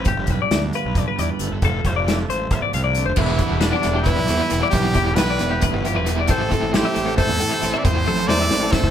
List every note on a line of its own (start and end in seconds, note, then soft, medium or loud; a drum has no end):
0.00 0.29 F3 medium
0.00 0.74 F4 medium
0.05 0.15 G1 loud
0.05 1.60 G2 medium
0.05 0.30 G4 medium
0.05 kick loud
0.05 closed hi-hat medium
0.17 0.26 G1 medium
0.27 0.38 B1 medium
0.27 1.16 G3 medium
0.27 0.40 B4 medium
0.27 kick medium
0.27 closed hi-hat medium
0.42 0.63 D5 medium
0.51 0.70 D2 medium
0.51 1.40 B3 medium
0.51 snare loud
0.51 closed hi-hat medium
0.73 2.30 F4 medium
0.73 0.97 B4 medium
0.73 closed hi-hat medium
0.85 1.04 B1 medium
0.95 1.60 D3 medium
0.95 1.07 D5 medium
0.95 kick medium
0.95 closed hi-hat medium
1.08 1.19 B4 medium
1.17 1.28 E2 medium
1.17 1.59 G3 medium
1.17 1.30 D5 medium
1.17 closed hi-hat medium
1.30 1.52 B4 medium
1.39 1.49 G1 medium
1.39 1.54 A3 medium
1.39 closed hi-hat medium
1.51 1.61 G1 medium
1.51 1.64 B3 soft
1.51 1.63 A4 medium
1.62 1.81 F1 medium
1.62 2.53 F2 medium
1.62 1.86 A4 medium
1.62 kick loud
1.62 closed hi-hat medium
1.84 2.23 F1 medium
1.84 3.20 F3 medium
1.84 1.96 C5 medium
1.84 kick medium
1.84 closed hi-hat medium
1.96 2.18 D5 medium
2.08 3.20 A3 medium
2.08 snare loud
2.08 closed hi-hat medium
2.29 2.48 A1 medium
2.29 2.53 C5 medium
2.29 3.18 C5 medium
2.29 closed hi-hat medium
2.51 2.61 A1 medium
2.51 2.75 B2 medium
2.51 2.62 E5 medium
2.51 kick loud
2.51 closed hi-hat medium
2.62 2.73 D5 medium
2.73 3.03 C2 medium
2.73 2.97 C3 medium
2.73 2.83 F5 medium
2.73 closed hi-hat medium
2.84 3.07 D5 medium
2.95 3.19 D3 medium
2.95 closed hi-hat medium
3.06 3.16 F1 medium
3.06 3.17 C5 medium
3.16 3.37 E1 loud
3.16 3.62 E3 loud
3.16 4.30 E3 medium
3.16 3.42 G3 medium
3.16 3.41 B3 loud
3.16 3.62 E4 medium
3.16 3.38 E4 loud
3.16 3.39 B4 medium
3.16 kick loud
3.16 crash loud
3.20 4.06 D4 medium
3.39 3.63 G3 medium
3.39 3.64 B3 medium
3.39 3.86 B3 medium
3.39 3.65 E4 medium
3.39 3.61 G4 medium
3.39 kick medium
3.39 closed hi-hat medium
3.51 3.71 E1 loud
3.61 4.51 E3 medium
3.61 5.18 G3 medium
3.61 4.31 G3 medium
3.61 4.02 D4 medium
3.61 5.20 G4 medium
3.61 3.73 B4 medium
3.61 snare loud
3.61 closed hi-hat medium
3.65 4.29 B3 medium
3.65 4.28 E4 loud
3.73 3.96 D5 medium
3.83 4.14 E1 medium
3.83 4.51 B3 medium
3.83 snare soft
3.83 closed hi-hat medium
3.96 4.07 G4 medium
4.02 4.68 E4 loud
4.02 kick loud
4.02 closed hi-hat medium
4.07 4.30 D4 medium
4.07 4.30 B4 medium
4.18 4.28 B1 medium
4.28 4.39 E2 medium
4.28 4.72 E3 medium
4.28 4.52 G3 soft
4.28 4.52 B3 medium
4.28 4.42 C4 medium
4.28 4.54 E4 medium
4.28 4.40 G4 medium
4.28 snare soft
4.28 closed hi-hat medium
4.40 4.72 D4 soft
4.40 4.63 B4 medium
4.50 4.61 E1 medium
4.50 4.73 E3 medium
4.50 4.75 G3 medium
4.50 4.72 B3 medium
4.50 4.75 B3 medium
4.50 closed hi-hat medium
4.54 4.76 E4 medium
4.63 4.74 D5 medium
4.70 4.93 B1 loud
4.70 5.64 E3 medium
4.70 5.18 E3 medium
4.70 6.27 D4 medium
4.70 5.16 G4 medium
4.70 4.96 B4 medium
4.70 kick loud
4.70 closed hi-hat medium
4.75 4.98 G3 medium
4.75 4.96 B3 loud
4.75 4.95 E4 loud
4.94 5.18 E1 medium
4.94 5.40 B3 medium
4.94 5.19 B3 medium
4.94 5.21 E4 medium
4.94 5.18 G4 medium
4.94 kick medium
4.94 closed hi-hat medium
4.98 5.19 G3 medium
5.15 5.40 B1 loud
5.15 6.06 E3 medium
5.15 5.86 G3 medium
5.15 5.67 B4 loud
5.15 5.29 B4 medium
5.15 snare loud
5.15 closed hi-hat loud
5.20 5.87 G3 loud
5.20 5.85 B3 medium
5.20 5.84 E4 loud
5.20 6.29 G4 medium
5.30 5.52 D5 medium
5.39 5.69 E1 medium
5.39 6.27 B3 medium
5.39 snare soft
5.39 closed hi-hat medium
5.51 5.62 G4 medium
5.61 5.86 E3 medium
5.61 5.85 B4 medium
5.61 kick loud
5.61 closed hi-hat medium
5.73 5.97 G1 medium
5.84 6.08 F3 medium
5.84 6.07 G3 medium
5.84 6.07 B3 medium
5.84 6.09 E4 medium
5.84 5.97 G4 medium
5.84 closed hi-hat medium
5.96 6.26 E1 loud
5.96 6.19 B4 medium
6.06 6.29 E3 medium
6.06 6.30 G3 medium
6.06 6.29 B3 medium
6.06 6.31 E4 medium
6.06 closed hi-hat medium
6.19 6.30 D5 medium
6.28 6.49 A1 loud
6.28 6.73 A2 medium
6.28 7.83 A2 medium
6.28 6.74 E3 loud
6.28 6.53 A3 loud
6.28 6.52 C4 loud
6.28 6.50 E4 loud
6.28 7.39 G4 medium
6.28 6.75 A4 medium
6.28 6.52 C5 medium
6.28 kick loud
6.28 closed hi-hat medium
6.50 6.75 A3 medium
6.50 6.97 C4 medium
6.50 6.75 C4 medium
6.50 6.76 E4 medium
6.50 6.76 A4 medium
6.50 kick medium
6.50 closed hi-hat medium
6.63 6.82 A1 loud
6.74 7.63 A2 medium
6.74 7.63 E3 medium
6.74 7.61 A3 medium
6.74 7.41 A3 loud
6.74 7.41 C4 medium
6.74 7.17 E4 medium
6.74 7.40 E4 loud
6.74 7.17 G4 medium
6.74 6.86 C5 medium
6.74 snare loud
6.74 closed hi-hat medium
6.85 7.07 E5 medium
6.96 7.26 A1 medium
6.96 7.62 C4 medium
6.96 closed hi-hat medium
7.06 7.18 A4 medium
7.17 7.88 E4 medium
7.17 7.80 A4 loud
7.17 7.40 C5 medium
7.17 kick loud
7.17 closed hi-hat medium
7.29 7.39 E2 medium
7.39 7.50 A2 medium
7.39 7.88 E3 medium
7.39 7.63 A3 medium
7.39 7.65 C4 medium
7.39 7.66 E4 medium
7.39 7.84 G4 medium
7.39 7.52 A4 medium
7.39 closed hi-hat medium
7.52 7.74 C5 medium
7.62 7.73 A1 medium
7.62 7.85 E3 medium
7.62 7.74 A3 medium
7.62 7.85 A3 medium
7.62 7.86 C4 medium
7.62 7.87 E4 medium
7.62 closed hi-hat medium
7.74 7.85 C4 medium
7.74 7.84 E5 medium
7.78 7.86 D5 medium
7.84 8.04 E2 loud
7.84 8.27 A2 medium
7.84 8.90 A2 medium
7.84 8.29 E3 medium
7.84 8.09 A3 loud
7.84 8.08 C4 medium
7.84 8.06 E4 loud
7.84 7.96 F4 medium
7.84 8.07 C5 medium
7.84 8.29 C5 loud
7.84 kick loud
7.84 closed hi-hat medium
7.96 8.28 G4 medium
8.05 8.28 A1 loud
8.05 8.17 A3 medium
8.05 8.30 C4 medium
8.05 8.30 E4 medium
8.05 8.30 A4 medium
8.05 high tom medium
8.10 8.28 A3 medium
8.17 8.49 C4 soft
8.28 8.50 E2 loud
8.28 8.90 A2 medium
8.28 8.90 E3 medium
8.28 8.90 A3 medium
8.28 8.90 C4 loud
8.28 8.90 E4 loud
8.28 8.90 G4 medium
8.28 8.41 C5 medium
8.28 8.74 D5 loud
8.28 snare medium
8.41 8.63 E5 medium
8.50 8.80 A1 medium
8.50 8.90 C4 medium
8.50 snare medium
8.62 8.72 A4 medium
8.72 8.90 E4 medium
8.72 8.90 A4 medium
8.72 8.90 C5 medium
8.72 kick loud
8.72 snare medium
8.83 8.90 C2 medium
8.83 kick medium